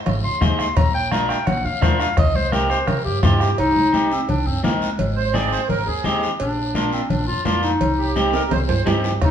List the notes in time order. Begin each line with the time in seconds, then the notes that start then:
0.06 G#1, bombo rim, cowbell, low conga, long guiro
0.24 D#2 C6
0.41 D#2 D#4 G#4 C5, bombo low, bombo rim, high conga, short guiro
0.59 C6, bombo rim, short guiro
0.77 A#1 A#5, bombo low, bombo rim, cowbell, low conga, long guiro
0.94 G5
1.11 D4 F4 A#4 A#5, bombo rim, high conga, short guiro
1.29 G5, bombo rim, short guiro
1.46 A#1 F#5, bombo rim, cowbell, low conga, long guiro
1.65 F2 F5
1.82 F2 D4 F4 A#4 C5, bombo low, bombo rim, high conga, low conga, low timbale, short guiro
2.00 F5, bombo rim, short guiro
2.17 C2 D#5, bombo low, bombo rim, cowbell, low conga, long guiro
2.35 C5, high conga
2.52 C4 D#4 G4 A#4, bombo rim, high conga, short guiro
2.70 C5, bombo rim, short guiro
2.87 C2 A#4, bombo rim, cowbell, low conga, long guiro
3.05 G2 G4
3.23 G2 C4 D#4 F4 G4, bombo low, bombo rim, high conga, low conga, low timbale, short guiro
3.40 G4, bombo rim, short guiro
3.58 C2 D#4, cowbell, long guiro
3.76 high conga
3.93 C4 D#4 G4, high conga, short guiro
4.12 C4, short guiro
4.29 C2 D4, cowbell, low conga, long guiro
4.47 G2 C4
4.64 D#2 A#3 C4 D#4 A#4, high conga, low conga, low timbale, short guiro
4.82 G#3, short guiro
4.99 G#1, cowbell, low conga, long guiro
5.16 C5
5.34 C4 D#4 G#4 D5, high conga, short guiro
5.51 C5, short guiro
5.69 G#1 A#4, cowbell, low conga, long guiro
5.87 D#2 G#4
6.04 D#2 C4 D#4 G4, high conga, short guiro
6.23 short guiro
6.39 A#1 D4, cowbell, long guiro
6.75 A#3 D4 F4, high conga, short guiro
6.93 C4, short guiro
7.10 A#1 D4, cowbell, low conga, long guiro
7.28 F2 F4
7.45 F2 A#3 D4 F4, high conga, low timbale, short guiro
7.63 D#4, short guiro
7.81 C2, cowbell, low conga, long guiro
7.99 G4
8.16 C4 D#4 G4, high conga, short guiro
8.33 A#4, high timbale, short guiro
8.51 C2 C5, cowbell, low conga, high timbale, long guiro
8.68 G2 C5, low timbale
8.86 G2 C4 D#4 G4, high conga, low timbale, short guiro
9.04 low timbale, short guiro
9.21 C2 D#4, bombo low, bombo rim, cowbell, long guiro